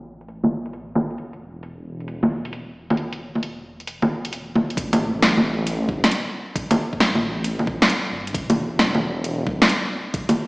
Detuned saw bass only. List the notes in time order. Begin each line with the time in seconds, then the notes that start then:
Already playing: A1
1.19 E1
4.77 A1
5.14 A1
5.88 G1
6.93 A1
8.12 G1
8.34 E1
8.72 E1
9.47 D1